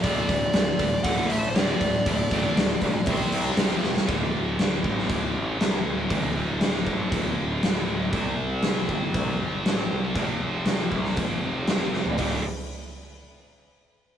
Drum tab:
HH |o-o-o-o-o-o-o-o-|o-o-o-o-o-o-o---|o---o---o---o---|o---o---o---o---|
SD |----o-------o---|----o-o----oo-oo|----o--o----o---|----o-------o---|
FT |----------------|----------------|----------------|----------------|
BD |o-o---o-o-----o-|o-o---o-o-------|o-----o-o-------|o-----o-o-------|

HH |o---o---o---o---|o---o---o---o---|o---------------|
SD |----o-------o---|----o--o----o-o-|----------------|
FT |----------------|---------------o|o---------------|
BD |o-----o-o-------|o-----o-o-------|o---------------|